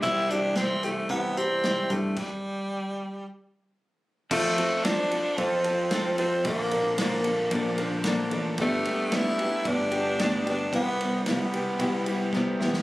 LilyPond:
<<
  \new Staff \with { instrumentName = "Steel-string acoustic guitar" } { \time 4/4 \key c \major \tempo 4 = 112 <c g c' e' g'>8 <c' e' g'>8 <c g c' e' g'>8 <c' e' g'>8 <g c' e' g'>8 <c' e' g'>8 <c g c' e' g'>8 <c' e' g'>8 | r1 | <f c' f' a'>8 <c' f' a'>8 <f c' f' a'>8 <c' f' a'>8 <f c' f' a'>8 <c' f' a'>8 <f c' f' a'>8 <c' f' a'>8 | <bes, d f bes d' a'>8 <f bes d' a'>8 <bes, d f bes d' a'>8 <f bes d' a'>8 <f bes d' a'>8 <f bes d' a'>8 <bes, d f bes d' a'>8 <f bes d' a'>8 |
<g, d a b d' g'>8 <a b d' g'>8 <g, d a b d' g'>8 <a b d' g'>8 <a b d' g'>8 <a b d' g'>8 <g, d a b d' g'>8 <a b d' g'>8 | <c g b e' g'>8 <b e' g'>8 <c g b e' g'>8 <b e' g'>8 <g b e' g'>8 <b e' g'>8 <c g b e' g'>8 <b e' g'>8 | }
  \new Staff \with { instrumentName = "Tenor saxophone" } { \time 4/4 \key c \major e'8 d'8 c'8 a8 b8 c'4 a8 | g2 r2 | a4 d'4 c'4. c'8 | bes4 bes2 r4 |
a4 e'4 d'4. d'8 | b4 b2 r4 | }
  \new Staff \with { instrumentName = "Overdriven electric guitar" } { \time 4/4 \key c \major <c e g e' g'>1 | r1 | f8 c'8 c'8 a'8 f'8 f8 c'8 f'8 | bes,8 d8 bes8 a'8 d'8 f8 bes8 d'8 |
g8 b8 b8 a'8 d'8 g8 b8 d'8 | c8 g8 b8 g'8 e'8 g8 b8 e'8 | }
  \new Staff \with { instrumentName = "Picked electric bass" } { \clef bass \time 4/4 \key c \major c,2 c4. g,8 | r1 | f,8 r4. f,2 | bes,,2 bes,,4. a,,8 |
g,,8 r4. g,,2 | c,2 c,4. e,8 | }
  \new DrumStaff \with { instrumentName = "Drums" } \drummode { \time 4/4 <hh bd>8 hh8 <hh sn>8 hh8 <hh bd>8 hh8 <hh sn>8 <hh bd>8 | <cymc bd>4 r4 r4 r4 | <cymc bd>8 cymr8 <cymr sn>8 cymr8 <bd cymr>8 cymr8 <cymr sn>8 cymr8 | <bd cymr>8 cymr8 <cymr sn>8 cymr8 <bd cymr>8 cymr8 <cymr sn>8 cymr8 |
<bd cymr>8 cymr8 <cymr sn>8 cymr8 <bd cymr>8 cymr8 <cymr sn>8 cymr8 | <bd cymr>8 cymr8 <cymr sn>8 cymr8 <bd cymr>8 cymr8 <bd sn>8 sn16 sn16 | }
>>